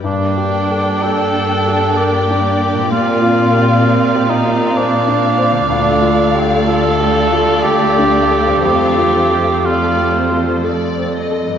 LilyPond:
<<
  \new Staff \with { instrumentName = "Violin section" } { \time 3/4 \key g \minor \tempo 4 = 62 << { g''2. | f''2.~ | f''2. | f''4 d''8 c''8 d''8 ees''8 | } \\ { d''2.~ | d''2. | d''2. | c''4 r2 | } >> }
  \new Staff \with { instrumentName = "Grand piano" } { \time 3/4 \key g \minor \tuplet 3/2 { g,8 g'8 a'8 g'8 a'8 g'8 bes'8 d'8 bes'8 } | \tuplet 3/2 { bes,8 f'8 g'8 f'8 g'8 f'8 c''8 d'8 c''8 } | \tuplet 3/2 { d,8 f'8 g'8 f'8 g'8 f'8 a'8 d'8 a'8 } | \tuplet 3/2 { f,8 f'8 g'8 f'8 g'8 f'8 a'8 c'8 a'8 } | }
  \new Staff \with { instrumentName = "Cor anglais" } { \time 3/4 \key g \minor d'4 a'4 g'4 | f'4. ees'8 d'4 | d'8 r8 a'4 g'4 | g'4 f'4 r4 | }
  \new Staff \with { instrumentName = "Harp" } { \time 3/4 \key g \minor <g, bes g' d''>2. | <bes, c' f' d''>2. | <d a f' d''>2. | <f, a a' c''>2. | }
  \new Staff \with { instrumentName = "Viola section" } { \time 3/4 \key g \minor << { bes2.~ | bes2. | a'2.~ | a'2. | } \\ { d'2. | c'2. | a2.~ | a2. | } >> }
  \new Staff \with { instrumentName = "Cello section" } { \clef bass \time 3/4 \key g \minor g,2. | bes,2. | d,2. | f,2. | }
>>